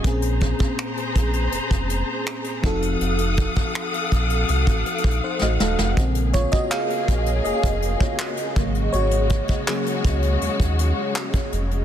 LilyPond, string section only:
\new Staff \with { instrumentName = "String section" } { \time 4/4 \key bes \minor \tempo 4 = 81 << { <aes' bes''>2.~ <aes' bes''>8 <a' ges''>8~ | <a' ges''>1 | des1~ | des1 | } \\ { c''2.~ c''8 <f'' ees'''>8~ | <f'' ees'''>1 | <bes aes'>2.~ <bes aes'>8 <aes ges'>8~ | <aes ges'>1 | } >> }